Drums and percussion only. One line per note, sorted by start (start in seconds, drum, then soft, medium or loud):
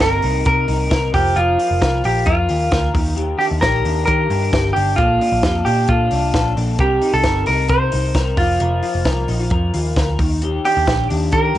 0.00 kick loud
0.00 snare loud
0.00 closed hi-hat medium
0.22 open hi-hat medium
0.45 kick loud
0.45 closed hi-hat medium
0.68 open hi-hat medium
0.91 kick loud
0.91 snare loud
0.91 closed hi-hat medium
1.14 kick loud
1.14 open hi-hat medium
1.37 closed hi-hat medium
1.59 open hi-hat medium
1.82 kick loud
1.82 snare loud
1.82 closed hi-hat medium
2.04 open hi-hat medium
2.26 kick loud
2.26 closed hi-hat medium
2.49 open hi-hat medium
2.72 kick loud
2.72 snare medium
2.72 closed hi-hat medium
2.95 kick loud
2.95 open hi-hat medium
3.17 closed hi-hat medium
3.41 open hi-hat medium
3.62 kick loud
3.62 snare loud
3.62 closed hi-hat medium
3.85 open hi-hat medium
4.07 kick loud
4.07 closed hi-hat medium
4.30 open hi-hat medium
4.53 kick loud
4.53 snare loud
4.53 closed hi-hat medium
4.76 open hi-hat medium
4.98 kick loud
4.98 closed hi-hat medium
5.21 open hi-hat medium
5.43 kick loud
5.43 snare loud
5.43 closed hi-hat medium
5.66 open hi-hat medium
5.88 kick loud
5.88 closed hi-hat medium
6.11 open hi-hat medium
6.34 kick loud
6.34 snare loud
6.34 closed hi-hat medium
6.57 open hi-hat medium
6.79 kick loud
6.79 closed hi-hat medium
7.02 open hi-hat medium
7.23 kick loud
7.23 snare loud
7.23 closed hi-hat medium
7.46 open hi-hat medium
7.68 kick loud
7.68 closed hi-hat medium
7.92 open hi-hat medium
8.15 kick loud
8.15 snare medium
8.15 closed hi-hat medium
8.37 kick loud
8.37 open hi-hat medium
8.60 closed hi-hat medium
8.83 open hi-hat medium
9.05 kick loud
9.05 snare loud
9.05 closed hi-hat medium
9.28 open hi-hat medium
9.50 kick loud
9.50 closed hi-hat medium
9.74 open hi-hat medium
9.96 kick loud
9.96 snare loud
9.96 closed hi-hat medium
10.19 kick loud
10.19 open hi-hat medium
10.42 closed hi-hat medium
10.65 open hi-hat medium
10.87 kick loud
10.87 snare loud
10.87 closed hi-hat medium
11.10 open hi-hat medium
11.32 kick loud
11.32 closed hi-hat medium
11.55 open hi-hat medium